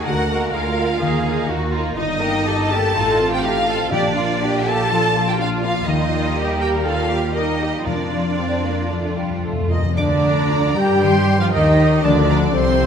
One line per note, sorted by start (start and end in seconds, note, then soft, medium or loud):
0.00 0.29 A#3 soft
0.00 0.77 A#4 soft
0.05 0.48 D2 medium
0.05 1.04 D3 medium
0.05 0.54 F#4 medium
0.05 0.27 A#4 medium
0.05 0.53 F#5 medium
0.29 0.77 G#3 soft
0.29 0.77 A#3 soft
0.29 1.25 A#3 soft
0.29 1.00 A#4 medium
0.53 0.96 D2 medium
0.53 1.49 F4 medium
0.53 1.04 G#4 soft
0.53 1.47 F5 medium
0.78 1.02 G#3 soft
0.78 1.01 A#3 soft
0.78 1.72 A#4 soft
1.01 1.44 D#2 medium
1.01 1.99 D#3 medium
1.01 1.24 A#3 soft
1.01 1.24 D#4 soft
1.01 1.48 G#4 medium
1.25 1.72 A#3 soft
1.25 2.20 A#3 soft
1.25 1.72 D#4 soft
1.49 1.91 D#2 medium
1.49 1.99 F#4 soft
1.49 1.73 F#4 medium
1.72 1.96 A#3 soft
1.72 1.96 D#4 soft
1.72 1.97 F4 medium
1.72 2.71 A#4 soft
1.97 2.92 G1 medium
1.97 2.98 G2 medium
1.97 2.67 D#4 medium
1.97 2.21 D#4 medium
1.97 2.20 D#4 medium
1.97 2.67 D#5 medium
2.20 2.46 A#3 soft
2.20 2.98 A#3 soft
2.20 2.46 G4 soft
2.20 2.46 A#4 medium
2.45 2.71 D#4 soft
2.45 2.98 G4 medium
2.45 2.71 A4 medium
2.70 2.96 A#3 soft
2.70 2.95 G4 medium
2.70 2.96 G4 soft
2.70 3.31 A4 medium
2.70 2.98 A#4 soft
2.70 3.31 A5 medium
2.95 3.92 A1 medium
2.95 3.94 A2 medium
2.95 3.18 A3 soft
2.95 3.18 D#4 medium
2.95 3.43 F4 medium
3.20 3.94 C4 soft
3.20 3.44 C4 medium
3.20 3.44 F4 soft
3.31 3.43 G4 medium
3.31 3.44 G5 medium
3.43 3.68 A3 soft
3.43 3.68 D#4 soft
3.43 4.40 F4 soft
3.43 3.92 F4 medium
3.43 3.67 G4 medium
3.43 3.92 F5 medium
3.67 3.92 C4 soft
3.67 3.92 F4 soft
3.67 3.91 A4 medium
3.67 3.93 D#5 soft
3.91 5.84 A#1 medium
3.91 4.62 A#2 medium
3.91 5.90 A#2 medium
3.91 4.64 D4 medium
3.91 4.14 D4 medium
3.91 4.15 G4 medium
3.91 4.65 D5 medium
4.16 4.41 A#3 soft
4.16 5.15 A#3 soft
4.16 4.40 F4 medium
4.16 4.41 F4 soft
4.41 4.67 D4 soft
4.41 5.38 F4 soft
4.41 4.91 G4 medium
4.66 4.92 A#3 soft
4.66 4.92 F4 soft
4.66 5.26 A4 medium
4.66 5.62 D5 soft
4.66 5.28 A5 medium
4.91 5.90 F3 soft
4.91 5.15 D4 soft
4.91 5.14 F4 medium
5.16 5.40 A#3 soft
5.16 6.10 A#3 soft
5.16 6.34 F4 medium
5.16 5.40 F4 soft
5.27 5.39 G4 soft
5.27 5.40 G5 medium
5.39 5.64 D4 soft
5.39 5.62 F4 medium
5.39 5.89 F4 soft
5.39 5.48 F5 medium
5.63 5.88 A#3 soft
5.63 5.71 F4 medium
5.63 5.88 F4 soft
5.63 5.89 D5 soft
5.63 5.87 F5 medium
5.87 7.82 D#2 medium
5.87 7.88 D#3 medium
5.87 7.32 G3 medium
5.87 7.32 A#3 medium
5.87 6.59 D#4 medium
5.87 6.61 D#5 medium
6.11 7.09 A#3 soft
6.36 7.34 G4 soft
6.36 6.60 G4 medium
6.60 6.84 G4 medium
6.60 6.85 A#4 medium
6.60 7.59 A#4 soft
6.60 6.69 G5 medium
6.84 7.89 D#4 soft
6.84 7.35 F4 medium
6.84 7.10 A4 medium
6.84 7.34 F5 medium
7.08 8.94 A#3 soft
7.08 7.34 G4 soft
7.34 7.86 G3 soft
7.34 7.85 A#3 soft
7.34 7.85 D#4 medium
7.34 7.89 G4 soft
7.34 7.60 A#4 medium
7.34 7.85 D#5 medium
7.60 7.86 G4 soft
7.60 8.38 A#4 soft
7.86 9.72 F2 soft
7.86 8.61 F2 medium
7.86 8.90 F3 soft
7.86 8.34 A#3 soft
7.86 9.44 D4 soft
7.86 9.66 F4 soft
7.86 9.41 D5 medium
8.13 8.64 F4 soft
8.38 8.63 C4 medium
8.38 8.94 A#4 soft
8.65 8.91 A#3 soft
8.65 9.17 F4 soft
8.91 8.99 F2 soft
8.91 11.04 F3 soft
8.91 9.18 A3 soft
9.00 9.07 F2 soft
9.17 9.44 G3 soft
9.17 10.48 F4 soft
9.22 9.29 F2 soft
9.30 9.37 F2 soft
9.38 9.44 F2 soft
9.44 9.51 F2 soft
9.44 9.70 A3 soft
9.44 9.99 A4 soft
9.53 9.59 F2 soft
9.61 9.66 F2 soft
9.68 9.75 F2 medium
9.68 9.97 A#3 soft
9.68 9.99 C5 soft
9.68 9.82 D#5 medium
9.68 9.95 D#5 soft
9.76 9.82 F2 medium
9.83 9.90 F2 medium
9.95 10.73 D2 medium
9.95 11.04 A#2 medium
9.95 10.72 D3 medium
9.95 10.73 D3 medium
9.95 10.73 D4 medium
9.95 10.75 D5 medium
9.95 10.05 D6 medium
10.14 11.04 A#3 soft
10.23 11.01 A#5 medium
10.32 10.84 A#4 soft
10.49 11.04 F4 soft
10.67 11.04 F5 soft
10.75 11.39 G2 medium
10.75 11.39 G3 medium
10.75 11.39 G4 medium
10.75 11.40 G5 medium
10.86 11.05 A#4 soft
11.03 12.06 D#3 medium
11.03 11.52 C6 medium
11.19 12.06 G3 soft
11.36 11.52 F3 medium
11.36 11.53 F3 medium
11.36 12.86 C5 soft
11.36 11.45 F5 medium
11.41 11.53 F4 medium
11.41 11.53 F5 medium
11.51 12.02 D#2 medium
11.51 12.02 D#3 medium
11.51 12.03 D#3 medium
11.51 12.03 D#4 medium
11.51 11.86 G4 soft
11.51 12.03 D#5 medium
11.51 12.03 G5 medium
11.70 12.06 G5 soft
11.87 12.06 G4 soft
12.03 12.54 D2 medium
12.03 12.53 D3 medium
12.03 12.54 D3 medium
12.03 12.86 F3 medium
12.03 12.55 D4 medium
12.03 12.55 D5 medium
12.03 12.54 D5 medium
12.03 12.12 A5 medium
12.21 12.86 F4 soft
12.30 12.38 A#5 medium
12.38 12.86 A4 soft
12.54 12.86 C2 medium
12.54 12.86 C3 medium
12.54 12.86 C4 medium
12.54 12.86 C5 medium
12.54 12.86 F5 medium
12.54 12.86 C6 medium
12.71 12.86 C6 medium